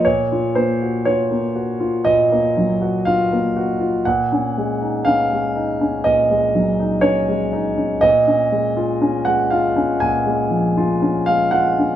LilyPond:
\new Staff \with { instrumentName = "Grand piano" } { \time 4/4 \key ges \lydian \tempo 4 = 60 << { des''8 c''8 des''4 ees''4 f''4 | ges''4 f''4 ees''4 des''4 | ees''4~ ees''16 ges''16 f''8 aes''4~ aes''16 f''16 ges''8 | } \\ { bes,16 f'16 bes16 ges'16 f'16 bes16 ges'16 f'16 bes,16 bes16 ges16 ges'16 f'16 bes16 ges'16 f'16 | bes,16 des'16 aes16 ees'16 des'16 aes16 ees'16 des'16 bes,16 aes16 ges16 ees'16 des'16 aes16 ees'16 des'16 | bes,16 des'16 aes16 f'16 des'16 aes16 f'16 des'16 bes,16 aes16 f16 f'16 des'16 aes16 f'16 des'16 | } >> }